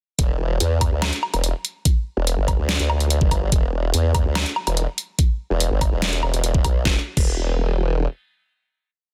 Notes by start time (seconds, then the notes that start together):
0.19 E1, kick, closed hi-hat
0.60 E2, closed hi-hat
0.81 kick, closed hi-hat, low woodblock
0.92 D2
1.02 snare, closed hi-hat, low woodblock
1.13 closed hi-hat
1.23 low woodblock
1.34 E1, closed hi-hat, low woodblock
1.44 closed hi-hat
1.65 closed hi-hat
1.85 kick, closed hi-hat
2.17 E1
2.27 closed hi-hat
2.38 G1
2.48 kick, closed hi-hat, low woodblock
2.59 D2
2.69 snare, closed hi-hat
2.80 D2, closed hi-hat
2.90 low woodblock
3.00 closed hi-hat
3.10 closed hi-hat
3.21 G1, kick
3.31 kick, closed hi-hat, low woodblock
3.52 E1, kick, closed hi-hat
3.94 E2, closed hi-hat
4.15 kick, closed hi-hat, low woodblock
4.25 D2
4.35 snare, closed hi-hat, low woodblock
4.46 closed hi-hat
4.56 low woodblock
4.67 E1, closed hi-hat, low woodblock
4.77 closed hi-hat
4.98 closed hi-hat
5.19 kick, closed hi-hat
5.50 E1
5.60 closed hi-hat
5.71 G1
5.81 kick, closed hi-hat, low woodblock
5.92 E1
6.02 snare, closed hi-hat
6.13 closed hi-hat
6.23 E1, low woodblock
6.34 closed hi-hat
6.44 closed hi-hat
6.54 kick
6.64 B1, kick, closed hi-hat, low woodblock
6.85 E1, kick, snare
7.17 E1, kick, crash